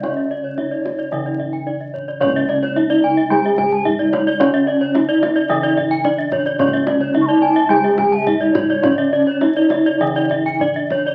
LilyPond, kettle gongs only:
<<
  \new Staff \with { instrumentName = "Kettle gongs" } { \time 4/4 \tempo 4 = 110 << { r4 d'8 r4. d'8 r8 | r4 d'8 r4. d'8 r8 | r4 d'8 r4. d'8 r8 | r4 d'8 r4. d'8 r8 |
r4 d'8 r4. d'8 r8 | } \\ { cis'2. r4 | cis'2. r4 | cis'2. r4 | cis'2. r4 |
cis'2. r4 | } >> }
  \new Staff \with { instrumentName = "Kettle gongs" } { \clef bass \time 4/4 << { r2 cis2~ | cis4 r2. | r2 cis2~ | cis4 r2. |
r2 cis2 | } \\ { cis,2 r2 | cis,1~ | cis,2 r2 | cis,1~ |
cis,2 r2 | } >> }
>>